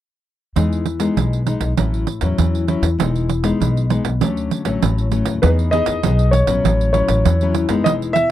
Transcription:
0.56 upright bass E2, nylon-string guitar E3 G#3 B3 D#4, pandeiro
0.73 pandeiro
0.86 pandeiro
0.99 nylon-string guitar G#3 B3 D#4, pandeiro
1.16 upright bass B1, nylon-string guitar B2, pandeiro
1.33 pandeiro
1.46 nylon-string guitar G#3 B3 D#4, pandeiro
1.60 upright bass B1, pandeiro
1.77 upright bass A1, nylon-string guitar A2 F#3 C#4 E4, pandeiro
1.94 pandeiro
2.07 pandeiro
2.21 upright bass E2, nylon-string guitar F#3 C#4 E4, pandeiro
2.38 upright bass E2, nylon-string guitar E3, pandeiro
2.55 pandeiro
2.68 nylon-string guitar F#3 C#4 E4, pandeiro
2.82 upright bass E2, pandeiro
2.99 upright bass E1, nylon-string guitar E3 G#3 B3 D#4, pandeiro
3.16 pandeiro
3.29 pandeiro
3.43 nylon-string guitar G#3 B3 D#4, pandeiro
3.60 upright bass B1, nylon-string guitar B2, pandeiro
3.77 pandeiro
3.90 nylon-string guitar G#3 B3 D#4, pandeiro
4.04 upright bass B1, pandeiro
4.21 upright bass D2, nylon-string guitar D3 F#3 A3 C#4, pandeiro
4.37 pandeiro
4.51 pandeiro
4.65 upright bass A1, nylon-string guitar F#3 A3 C#4, pandeiro
4.82 upright bass A1, nylon-string guitar A2, pandeiro
4.98 pandeiro
5.11 nylon-string guitar F#3 A3 C#4, pandeiro
5.25 upright bass D#2, pandeiro
5.42 upright bass E2, nylon-string guitar E3 B3 D#4 G#4, grand piano B4, pandeiro
5.59 pandeiro
5.71 nylon-string guitar B3 D#4 G#4, grand piano D#5, pandeiro
5.86 upright bass E2, pandeiro
6.03 upright bass B1, nylon-string guitar B2 B3 D#4 G#4, pandeiro
6.19 pandeiro
6.31 grand piano C#5, pandeiro
6.47 upright bass A#1, nylon-string guitar F#3 C#4 E4, pandeiro
6.64 upright bass A1, nylon-string guitar A2, pandeiro
6.81 pandeiro
6.93 nylon-string guitar F#3 C#4 E4, grand piano C#5, pandeiro
7.08 upright bass A1, pandeiro
7.25 upright bass E2, nylon-string guitar E3, pandeiro
7.41 nylon-string guitar F#3 C#4 E4, pandeiro
7.54 pandeiro
7.69 upright bass F#1, nylon-string guitar G#3 B3 D#4, pandeiro
7.84 upright bass E1, nylon-string guitar E3, grand piano D#5, pandeiro
8.02 pandeiro
8.13 grand piano E5, pandeiro

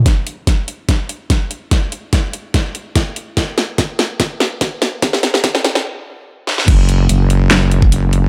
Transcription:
0.06 kick, snare, closed hi-hat
0.27 closed hi-hat
0.47 kick, snare, closed hi-hat
0.68 closed hi-hat
0.89 kick, snare, closed hi-hat
1.09 closed hi-hat
1.30 kick, snare, closed hi-hat
1.51 closed hi-hat
1.71 kick, snare, closed hi-hat
1.92 closed hi-hat
2.13 kick, snare, closed hi-hat
2.33 closed hi-hat
2.54 kick, snare, closed hi-hat
2.75 closed hi-hat
2.95 kick, snare, closed hi-hat
3.16 closed hi-hat
3.37 kick, snare, closed hi-hat
3.58 snare, closed hi-hat
3.78 kick, snare, closed hi-hat
3.99 snare, closed hi-hat
4.20 kick, snare, closed hi-hat
4.40 snare, closed hi-hat
4.61 kick, snare, closed hi-hat
4.82 snare, closed hi-hat
5.02 kick, snare, closed hi-hat
5.13 snare
5.23 snare, closed hi-hat
5.34 snare
5.44 kick, snare, closed hi-hat
5.55 snare
5.64 snare, closed hi-hat
5.75 snare
6.47 snare
6.58 snare
6.68 wobble bass F#1, kick, closed hi-hat, crash
6.89 closed hi-hat
7.09 wobble bass F#1, closed hi-hat
7.30 closed hi-hat
7.51 snare, clap, closed hi-hat
7.71 closed hi-hat
7.82 kick
7.92 wobble bass F#1, closed hi-hat
8.13 closed hi-hat

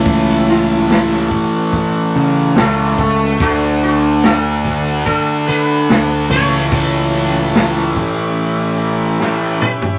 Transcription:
Already playing: picked electric bass C#2, distorted electric guitar A2 E3 A3, transistor combo organ C#4 E4 A4, sitar E4
0.06 kick, open hi-hat
0.49 sitar E4
0.90 snare, open hi-hat
1.11 snare
1.29 transistor combo organ F#4, kick
1.73 kick, open hi-hat
2.16 picked electric bass C#3
2.56 picked electric bass C#2, distorted electric guitar A2 E3 A3, sitar A4, snare, open hi-hat
2.98 kick
3.40 picked electric bass D2, distorted electric guitar D3 A3 D4, transistor combo organ D4, sitar F#4, kick, open hi-hat
3.83 sitar F#4
4.23 sitar A4, snare, open hi-hat
4.65 kick
5.05 sitar A4, kick, open hi-hat
5.48 picked electric bass D3, sitar B4
5.89 picked electric bass D2, snare, open hi-hat
6.28 picked electric bass C#2, distorted electric guitar A2, transistor combo organ C#4 E4 A4, sitar C#5, kick
6.32 distorted electric guitar E3 A3
6.71 kick, open hi-hat
7.55 snare, open hi-hat
7.76 snare
7.96 transistor combo organ G4, kick
9.20 distorted electric guitar A2 E3 A3, snare
9.60 sitar B4, mid tom
9.82 floor tom

